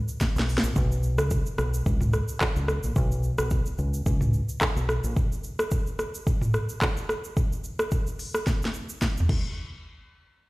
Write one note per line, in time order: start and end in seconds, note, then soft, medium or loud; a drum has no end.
0.08 shaker medium
0.20 kick medium
0.20 snare medium
0.20 shaker medium
0.36 0.58 B1 medium
0.36 snare medium
0.36 shaker medium
0.49 open hi-hat medium
0.49 shaker soft
0.58 snare loud
0.63 0.73 A#1 medium
0.63 shaker loud
0.76 1.19 B1 loud
0.76 kick loud
0.76 shaker medium
0.92 shaker medium
1.03 shaker medium
1.18 1.40 C#2 loud
1.18 cross-stick loud
1.18 shaker medium
1.30 kick medium
1.30 shaker medium
1.46 shaker medium
1.58 1.80 B1 medium
1.58 cross-stick loud
1.58 shaker medium
1.74 shaker loud
1.86 2.20 C#2 loud
1.86 kick loud
1.86 shaker medium
2.01 mid tom medium
2.01 shaker medium
2.13 cross-stick medium
2.13 shaker medium
2.28 shaker loud
2.40 kick medium
2.40 cross-stick loud
2.40 clap loud
2.40 shaker medium
2.56 2.78 C#2 loud
2.56 shaker medium
2.68 cross-stick loud
2.68 shaker soft
2.83 2.94 A#1 medium
2.83 shaker loud
2.96 3.30 B1 loud
2.96 kick loud
2.96 shaker medium
3.12 shaker medium
3.23 shaker medium
3.38 3.61 B1 medium
3.38 cross-stick loud
3.38 shaker medium
3.50 kick loud
3.50 shaker medium
3.66 shaker medium
3.78 4.01 C#2 loud
3.78 shaker medium
3.94 shaker loud
4.06 4.40 C#2 loud
4.06 kick loud
4.06 shaker medium
4.21 mid tom medium
4.21 shaker medium
4.33 shaker medium
4.49 shaker loud
4.61 kick medium
4.61 cross-stick loud
4.61 clap loud
4.61 shaker medium
4.76 4.98 B1 medium
4.76 shaker soft
4.89 cross-stick loud
4.89 shaker soft
5.04 5.14 A#1 medium
5.04 shaker loud
5.16 kick loud
5.16 shaker medium
5.32 shaker medium
5.44 shaker medium
5.59 cross-stick loud
5.59 shaker medium
5.71 kick loud
5.71 shaker medium
5.87 shaker medium
5.99 cross-stick medium
5.99 shaker medium
6.15 shaker loud
6.27 kick loud
6.27 shaker medium
6.41 mid tom medium
6.41 shaker medium
6.54 cross-stick medium
6.54 shaker medium
6.69 shaker loud
6.81 kick medium
6.81 cross-stick loud
6.81 clap loud
6.81 shaker medium
6.97 shaker soft
7.09 cross-stick loud
7.09 shaker soft
7.24 shaker loud
7.37 kick loud
7.37 shaker medium
7.52 shaker medium
7.64 shaker medium
7.79 cross-stick loud
7.79 shaker medium
7.91 kick loud
7.91 shaker medium
8.07 shaker medium
8.19 open hi-hat medium
8.19 shaker medium
8.35 cross-stick loud
8.35 shaker loud
8.47 kick loud
8.47 snare medium
8.47 shaker medium
8.62 snare medium
8.62 shaker medium
8.74 shaker medium
8.89 shaker loud
9.01 kick medium
9.01 snare medium
9.01 shaker medium
9.17 floor tom loud
9.17 shaker medium
9.29 kick loud
9.29 crash medium